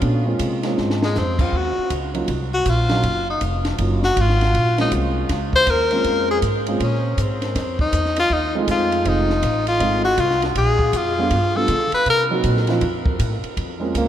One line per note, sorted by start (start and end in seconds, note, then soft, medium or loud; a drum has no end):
0.01 0.39 A#2 medium
0.01 0.23 A3 medium
0.01 0.23 B3 medium
0.01 0.24 C#4 medium
0.01 0.24 D4 medium
0.01 0.24 F#4 medium
0.01 kick soft
0.01 ride medium
0.26 0.59 G#3 medium
0.26 0.59 A#3 medium
0.26 0.59 C4 medium
0.26 0.59 C#4 medium
0.26 0.60 F4 medium
0.39 0.77 C3 medium
0.39 kick soft
0.39 hi-hat pedal medium
0.39 ride medium
0.63 1.13 G#3 medium
0.63 1.13 A#3 medium
0.63 1.13 C4 medium
0.63 1.14 C#4 medium
0.63 1.13 F4 medium
0.63 snare soft
0.63 ride soft
0.77 1.15 G#2 medium
0.77 snare soft
0.90 snare medium
1.02 1.20 G#3 medium
1.02 snare medium
1.15 1.52 F2 medium
1.15 1.43 C4 medium
1.15 snare medium
1.15 hi-hat pedal medium
1.39 1.58 F4 medium
1.39 kick medium
1.39 crash medium
1.52 1.75 D#2 medium
1.52 1.93 F#4 medium
1.52 kick soft
1.78 muted upright bass stroke soft
1.90 2.27 C#2 medium
1.90 kick soft
1.90 hi-hat pedal medium
1.90 ride medium
2.14 2.27 F#3 medium
2.14 2.27 A#3 medium
2.14 2.27 C#4 medium
2.14 2.27 D#4 medium
2.14 2.27 F4 medium
2.14 ride medium
2.28 2.65 C2 medium
2.28 kick soft
2.28 ride medium
2.54 2.71 F#4 medium
2.65 3.02 A#1 loud
2.65 3.29 F4 medium
2.65 kick soft
2.65 hi-hat pedal medium
2.65 ride medium
2.89 3.03 F#3 medium
2.89 3.03 A#3 medium
2.89 3.03 C#4 medium
2.89 3.03 D#4 medium
2.89 3.03 F4 medium
2.89 snare medium
2.89 ride soft
3.03 3.40 F#1 medium
3.03 kick soft
3.03 ride medium
3.30 3.42 D#4 medium
3.41 3.78 F1 medium
3.41 kick soft
3.41 hi-hat pedal medium
3.41 ride medium
3.65 snare medium
3.65 ride soft
3.78 4.16 F#1 medium
3.78 4.00 F#3 medium
3.78 4.01 A#3 medium
3.78 4.01 C#4 medium
3.78 4.01 D#4 soft
3.78 4.01 F4 medium
3.78 kick soft
3.78 ride medium
4.03 4.22 F#4 loud
4.03 snare medium
4.17 4.53 G#1 loud
4.17 kick soft
4.17 hi-hat pedal medium
4.17 ride medium
4.21 4.80 F4 medium
4.29 snare soft
4.41 snare soft
4.41 ride soft
4.54 4.91 A#1 medium
4.54 kick soft
4.54 ride medium
4.78 5.27 G#3 medium
4.78 5.27 A#3 medium
4.78 5.27 C4 medium
4.78 5.27 C#4 medium
4.78 4.93 D#4 medium
4.78 5.28 F4 medium
4.78 snare medium
4.78 ride soft
4.92 5.29 C2 medium
4.92 kick soft
4.92 hi-hat pedal medium
4.92 ride medium
5.29 5.66 C#2 medium
5.29 kick soft
5.29 snare soft
5.29 ride medium
5.53 5.72 C5 loud
5.53 kick medium
5.67 6.04 D#2 medium
5.67 6.30 A#4 loud
5.67 kick soft
5.67 hi-hat pedal medium
5.67 ride medium
5.91 6.40 G#3 medium
5.91 6.40 A#3 medium
5.91 6.40 C4 medium
5.91 6.41 C#4 medium
5.91 6.41 F4 medium
5.91 ride soft
6.04 6.41 F2 medium
6.04 kick soft
6.04 ride medium
6.31 6.39 G#4 medium
6.42 6.79 G#2 medium
6.42 kick soft
6.42 hi-hat pedal medium
6.42 ride medium
6.67 6.80 G#3 medium
6.67 6.80 A#3 medium
6.67 6.80 C4 medium
6.67 6.80 C#4 medium
6.67 6.80 F4 medium
6.67 ride medium
6.80 7.17 A#2 medium
6.80 7.23 C#4 medium
6.80 kick soft
6.80 ride medium
7.17 7.54 G#2 medium
7.17 7.80 C4 medium
7.17 kick soft
7.17 hi-hat pedal medium
7.17 ride medium
7.42 snare soft
7.42 ride soft
7.55 7.92 F2 medium
7.55 kick soft
7.55 snare soft
7.55 ride medium
7.79 8.15 D#4 medium
7.79 kick medium
7.92 8.29 E2 loud
7.92 kick soft
7.92 hi-hat pedal medium
7.92 ride medium
8.05 snare soft
8.16 8.35 F4 loud
8.16 snare soft
8.16 ride medium
8.30 8.67 D#2 medium
8.30 8.56 D#4 medium
8.30 kick soft
8.55 9.04 G#3 medium
8.55 9.04 A3 medium
8.55 9.04 C4 medium
8.55 9.04 D#4 medium
8.55 9.04 F4 medium
8.68 9.05 F2 loud
8.68 9.10 F4 medium
8.68 kick soft
8.68 hi-hat pedal medium
8.68 ride medium
8.92 ride soft
9.05 9.42 F1 medium
9.05 9.27 G#3 medium
9.05 9.27 A3 medium
9.05 9.27 C4 medium
9.05 9.28 D#4 medium
9.05 9.67 D#4 medium
9.05 9.28 F4 medium
9.05 kick soft
9.05 ride medium
9.30 snare soft
9.42 9.79 A1 loud
9.42 kick soft
9.42 hi-hat pedal medium
9.42 ride medium
9.67 10.03 F4 medium
9.67 ride medium
9.79 10.17 G#1 medium
9.79 10.02 G#3 medium
9.79 10.02 A3 medium
9.79 10.02 C4 medium
9.79 10.02 D#4 medium
9.79 10.03 F4 medium
9.79 kick soft
9.79 ride medium
10.05 10.21 F#4 loud
10.18 10.55 C2 loud
10.18 10.43 F4 medium
10.18 kick soft
10.18 hi-hat pedal medium
10.18 ride medium
10.30 snare soft
10.42 snare soft
10.42 ride medium
10.55 10.92 A#1 medium
10.55 10.98 G#4 medium
10.55 kick soft
10.55 ride medium
10.79 kick medium
10.92 11.30 F2 loud
10.92 kick soft
10.92 hi-hat pedal medium
10.92 ride medium
10.97 11.58 F4 medium
11.18 11.30 G3 medium
11.18 11.31 A3 medium
11.18 11.31 B3 medium
11.18 11.31 D4 medium
11.18 11.31 F4 medium
11.30 11.67 G2 medium
11.30 kick soft
11.30 ride medium
11.55 11.68 G3 medium
11.55 11.68 A3 medium
11.55 11.69 B3 medium
11.55 11.68 D4 medium
11.55 11.68 F4 medium
11.55 11.93 A4 loud
11.68 11.91 D3 loud
11.68 kick soft
11.68 hi-hat pedal medium
11.68 ride medium
11.92 12.06 B4 loud
11.92 muted upright bass stroke soft
11.92 ride medium
12.06 12.43 C3 medium
12.06 kick soft
12.06 ride medium
12.10 12.23 A#4 loud
12.30 12.66 F#3 medium
12.30 12.66 A#3 medium
12.30 12.66 C4 medium
12.30 12.66 D#4 medium
12.30 12.66 F#4 medium
12.44 12.81 A#2 medium
12.44 kick soft
12.44 hi-hat pedal medium
12.44 ride medium
12.57 snare soft
12.67 12.81 F3 medium
12.67 12.81 A3 medium
12.67 12.81 C4 medium
12.67 12.81 D#4 medium
12.67 12.82 F4 medium
12.67 snare soft
12.67 ride soft
12.81 13.18 F2 medium
12.81 kick soft
12.81 ride medium
13.06 kick medium
13.19 13.42 A2 loud
13.19 kick soft
13.19 hi-hat pedal medium
13.19 ride medium
13.43 muted upright bass stroke soft
13.43 ride soft
13.57 13.93 F2 medium
13.57 kick soft
13.57 ride medium
13.80 14.08 G#3 medium
13.80 14.08 A#3 medium
13.80 14.08 C4 medium
13.80 14.08 C#4 medium
13.80 14.08 F4 medium
13.94 14.08 C#2 medium
13.94 14.08 A#3 medium
13.94 kick soft
13.94 hi-hat pedal medium
13.94 ride medium